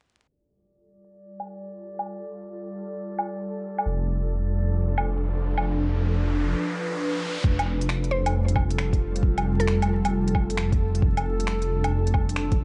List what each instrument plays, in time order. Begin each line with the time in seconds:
0.27 ambient pad G3 F4 A4, synth texture D5
1.40 low woodblock
1.99 low woodblock
3.19 low woodblock
3.78 low woodblock
3.86 detuned saw bass F1, ambient pad F3 D4, riser
4.98 low woodblock
5.58 low woodblock
5.64 ambient pad B4
7.44 detuned saw bass F1, ambient pad G3 F4 A4, synth texture A4, kick
7.59 closed hi-hat, low woodblock
7.81 closed hi-hat
7.89 finger snap
8.04 closed hi-hat
8.11 synth pluck C5
8.26 closed hi-hat, low woodblock
8.48 closed hi-hat
8.56 kick, low woodblock
8.71 closed hi-hat
8.78 finger snap
8.93 kick, closed hi-hat
9.16 closed hi-hat
9.23 kick
9.38 closed hi-hat, low woodblock
9.60 synth pluck A4, closed hi-hat
9.67 finger snap
9.82 closed hi-hat, low woodblock
10.05 closed hi-hat, low woodblock
10.28 closed hi-hat
10.35 kick, low woodblock
10.50 closed hi-hat
10.57 finger snap
10.72 kick, closed hi-hat
10.95 closed hi-hat
11.02 detuned saw bass F1, ambient pad F3 D4, kick
11.17 closed hi-hat, low woodblock
11.40 closed hi-hat
11.47 finger snap
11.62 closed hi-hat
11.84 closed hi-hat, low woodblock
12.07 closed hi-hat
12.14 kick, low woodblock
12.29 closed hi-hat
12.36 finger snap
12.52 kick, closed hi-hat